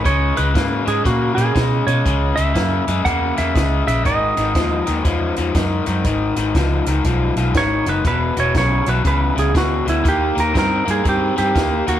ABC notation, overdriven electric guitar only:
X:1
M:4/4
L:1/8
Q:"Swing" 1/4=120
K:G#m
V:1 name="Overdriven electric guitar" clef=bass
[C,G,] [C,G,] [C,A,] [C,G,] [C,A,] [C,A,] [C,G,] [C,G,] | [C,G,] [C,G,] [C,A,] [C,G,] [C,A,] [C,A,] [C,G,] [C,G,] | [G,,D,] [G,,D,] [G,,^E,] [G,,D,] [G,,E,] [G,,E,] [G,,D,] [G,,D,] | [G,,D,] [G,,D,] [G,,^E,] [G,,D,] [G,,E,] [G,,E,] [G,,D,] [G,,D,] |
[E,,B,,] [E,,B,,] [E,,C,] [E,,B,,] [E,,C,] [E,,C,] [E,,B,,] [E,,B,,] | [D,A,] [D,A,] [D,^B,] [D,A,] [D,B,] [D,B,] [D,A,] [D,A,] |]